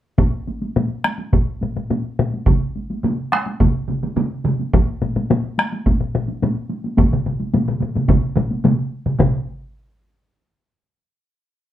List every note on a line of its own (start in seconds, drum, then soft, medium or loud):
0.18 taiko medium
0.18 taiko low-mid medium
0.18 taiko high medium
0.47 taiko high soft
0.62 taiko high soft
0.76 taiko low-mid medium
0.76 taiko high medium
1.04 taiko rim medium
1.04 taiko high soft
1.18 taiko high soft
1.33 taiko medium
1.33 taiko low-mid medium
1.33 taiko high medium
1.62 taiko low-mid medium
1.62 taiko high soft
1.76 taiko low-mid medium
1.76 taiko high soft
1.90 taiko low-mid medium
1.90 taiko high medium
2.19 taiko low-mid medium
2.19 taiko high soft
2.34 taiko high soft
2.46 taiko medium
2.46 taiko mid medium
2.46 taiko high medium
2.76 taiko high soft
2.90 taiko high soft
3.03 taiko mid medium
3.03 taiko high medium
3.32 taiko rim medium
3.32 taiko high soft
3.46 taiko high soft
3.60 taiko medium
3.60 taiko mid medium
3.60 taiko high medium
3.89 taiko mid medium
3.89 taiko high soft
4.03 taiko mid medium
4.03 taiko high soft
4.16 taiko mid medium
4.16 taiko high medium
4.45 taiko mid medium
4.45 taiko high soft
4.59 taiko high soft
4.73 taiko medium
4.73 taiko low-mid medium
4.73 taiko high medium
5.02 taiko low-mid medium
5.02 taiko high soft
5.16 taiko low-mid medium
5.16 taiko high soft
5.30 taiko low-mid medium
5.30 taiko high medium
5.58 taiko rim medium
5.58 taiko high medium
5.72 taiko high soft
5.86 taiko medium
5.86 taiko low-mid medium
5.86 taiko high medium
6.00 taiko low-mid medium
6.15 taiko low-mid medium
6.15 taiko high soft
6.29 taiko high soft
6.42 taiko low-mid medium
6.42 taiko high medium
6.70 taiko high soft
6.84 taiko high soft
6.98 taiko medium
6.98 taiko low-mid medium
6.98 taiko mid medium
6.98 taiko high medium
7.12 taiko low-mid medium
7.12 taiko mid medium
7.26 taiko low-mid medium
7.26 taiko mid medium
7.40 taiko high soft
7.54 taiko low-mid medium
7.54 taiko mid medium
7.54 taiko high medium
7.68 taiko low-mid medium
7.68 taiko mid medium
7.81 taiko low-mid medium
7.81 taiko mid medium
7.81 taiko high medium
7.95 taiko low-mid medium
7.95 taiko mid medium
7.95 taiko high soft
8.08 taiko medium
8.08 taiko low-mid medium
8.08 taiko mid medium
8.08 taiko high medium
8.36 taiko low-mid medium
8.36 taiko mid medium
8.36 taiko high medium
8.51 taiko high soft
8.64 taiko low-mid medium
8.64 taiko mid medium
8.64 taiko high medium
9.06 taiko low-mid medium
9.06 taiko mid medium
9.19 taiko medium
9.19 taiko low-mid medium
9.19 taiko mid medium
9.19 taiko high medium